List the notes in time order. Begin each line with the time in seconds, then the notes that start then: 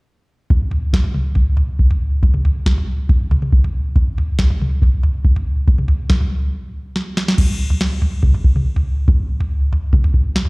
0.50 kick, floor tom
0.71 floor tom
0.93 kick, snare
1.04 floor tom
1.14 mid tom
1.35 kick, floor tom
1.57 floor tom
1.79 kick
1.91 floor tom
2.23 kick, floor tom
2.34 mid tom
2.45 floor tom
2.66 kick, snare
2.78 floor tom
3.09 kick, floor tom
3.31 floor tom, mid tom
3.42 mid tom
3.53 kick
3.64 floor tom
3.96 kick, floor tom
4.18 floor tom
4.39 kick, snare
4.50 floor tom
4.62 mid tom
4.82 kick, floor tom
5.03 floor tom
5.25 kick
5.36 floor tom
5.68 kick, floor tom
5.78 mid tom
5.88 floor tom
6.10 kick, snare
6.21 floor tom
6.96 snare
7.17 snare
7.28 snare
7.38 kick, floor tom, crash
7.70 floor tom
7.81 snare
8.02 floor tom
8.23 kick, mid tom
8.34 floor tom
8.44 kick
8.56 mid tom
8.76 floor tom
9.08 kick, floor tom
9.40 floor tom
9.73 floor tom
9.93 kick, mid tom
10.04 floor tom
10.14 kick
10.36 snare
10.45 floor tom